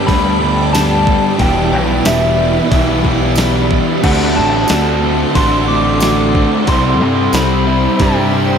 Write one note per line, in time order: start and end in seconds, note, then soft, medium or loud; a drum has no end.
0.00 1.35 G4 medium
0.00 6.63 D5 medium
0.00 1.37 G5 medium
0.00 4.00 B5 medium
0.05 1.16 D2 loud
0.05 0.72 G2 medium
0.05 0.71 D3 medium
0.05 0.40 G3 medium
0.05 0.39 B3 loud
0.05 0.38 D4 loud
0.05 0.75 B5 loud
0.05 kick loud
0.05 open hi-hat medium
0.38 0.73 G3 medium
0.38 0.74 B3 medium
0.38 0.76 D4 medium
0.43 0.74 D3 medium
0.73 1.37 G2 medium
0.73 1.37 D3 medium
0.73 1.07 G3 medium
0.73 1.05 B3 medium
0.73 1.04 D4 medium
0.73 1.38 A5 loud
0.73 snare loud
0.73 open hi-hat medium
0.73 tambourine medium
1.05 1.38 G3 medium
1.05 1.37 B3 medium
1.05 1.40 D4 medium
1.05 kick medium
1.09 1.38 D3 medium
1.38 1.73 E1 loud
1.38 2.03 E2 medium
1.38 1.73 B2 loud
1.38 2.04 E3 loud
1.38 1.73 G3 loud
1.38 1.72 B3 loud
1.38 1.71 E4 loud
1.38 4.01 G4 medium
1.38 4.00 E5 medium
1.38 2.08 G5 loud
1.38 kick loud
1.38 open hi-hat medium
1.42 2.71 E3 loud
1.71 1.99 B1 medium
1.71 2.04 B2 medium
1.71 2.06 E3 medium
1.71 2.04 G3 medium
1.71 2.05 B3 medium
1.71 2.06 E4 medium
2.04 2.59 E1 medium
2.04 2.69 E2 medium
2.04 2.39 B2 medium
2.04 2.69 E3 medium
2.04 2.39 G3 medium
2.04 2.37 B3 medium
2.04 2.36 E4 medium
2.04 3.71 E5 loud
2.04 snare loud
2.04 open hi-hat medium
2.04 tambourine medium
2.37 2.71 B2 medium
2.37 2.72 E3 medium
2.37 2.70 G3 medium
2.37 2.71 B3 medium
2.37 2.72 E4 medium
2.70 3.79 B1 loud
2.70 3.35 E2 medium
2.70 3.06 B2 loud
2.70 3.35 E3 medium
2.70 3.05 G3 medium
2.70 3.04 B3 loud
2.70 3.02 E4 loud
2.70 kick loud
2.70 open hi-hat medium
2.75 4.03 E3 medium
3.04 3.37 B2 medium
3.04 3.38 E3 medium
3.04 3.37 G3 medium
3.04 3.38 B3 medium
3.04 3.38 E4 medium
3.04 kick medium
3.36 4.01 E2 medium
3.36 3.71 B2 medium
3.36 4.01 E3 medium
3.36 3.71 G3 medium
3.36 3.70 B3 medium
3.36 3.68 E4 medium
3.36 snare loud
3.36 open hi-hat medium
3.36 tambourine medium
3.69 4.02 B2 medium
3.69 4.01 E3 medium
3.69 4.02 G3 medium
3.69 4.01 B3 medium
3.69 4.01 E4 medium
3.69 kick medium
4.02 4.39 D2 loud
4.02 4.68 D3 medium
4.02 4.38 A3 loud
4.02 4.37 C4 loud
4.02 4.35 D4 loud
4.02 4.35 F#4 loud
4.02 6.64 A4 medium
4.02 6.64 F#5 medium
4.02 4.38 F#5 medium
4.02 6.64 C6 medium
4.02 kick loud
4.02 crash medium
4.36 4.64 A1 medium
4.36 4.69 A3 medium
4.36 4.70 C4 medium
4.36 4.71 D4 medium
4.36 4.70 F#4 medium
4.36 5.37 A5 loud
4.68 5.24 D2 medium
4.68 5.33 D3 medium
4.68 5.03 A3 medium
4.68 5.03 C4 medium
4.68 5.00 F#4 medium
4.68 snare loud
4.68 open hi-hat medium
4.68 tambourine medium
4.72 5.00 D4 medium
5.01 5.35 A3 medium
5.01 5.35 C4 medium
5.01 5.36 D4 medium
5.01 5.36 F#4 medium
5.35 6.44 A1 medium
5.35 5.99 D3 medium
5.35 5.68 A3 medium
5.35 5.67 C4 loud
5.35 5.66 D4 loud
5.35 5.66 F#4 medium
5.35 5.69 C6 loud
5.35 kick loud
5.35 open hi-hat medium
5.67 6.01 A3 medium
5.67 6.01 C4 medium
5.67 6.03 D4 medium
5.67 6.02 F#4 medium
5.67 6.67 D6 loud
6.00 6.65 D3 medium
6.00 6.34 A3 medium
6.00 6.33 C4 medium
6.00 6.31 F#4 medium
6.00 snare loud
6.00 open hi-hat medium
6.00 tambourine medium
6.05 6.33 D4 medium
6.32 6.65 A3 medium
6.32 6.65 C4 medium
6.32 6.65 D4 medium
6.32 6.64 F#4 medium
6.32 kick medium
6.67 7.01 C2 loud
6.67 7.33 C3 medium
6.67 7.03 G3 loud
6.67 7.01 C4 loud
6.67 7.00 E4 loud
6.67 8.58 G4 medium
6.67 8.58 C5 medium
6.67 8.58 E5 medium
6.67 7.36 C6 loud
6.67 kick loud
6.67 open hi-hat medium
7.01 7.28 G2 medium
7.01 7.35 G3 medium
7.01 7.35 C4 medium
7.01 7.36 E4 medium
7.33 7.87 C2 loud
7.33 7.99 C3 medium
7.33 7.69 G3 medium
7.33 7.67 C4 medium
7.33 7.99 B5 loud
7.33 snare loud
7.33 open hi-hat medium
7.33 tambourine medium
7.37 7.66 E4 medium
7.67 8.00 G3 medium
7.67 8.00 C4 medium
7.67 8.02 E4 medium
8.00 8.58 G2 loud
8.00 8.58 C3 medium
8.00 8.35 G3 loud
8.00 8.33 C4 loud
8.00 8.31 E4 loud
8.00 8.58 G5 medium
8.00 kick loud
8.00 open hi-hat medium
8.33 8.58 G3 medium
8.33 8.58 C4 medium
8.33 8.58 E4 medium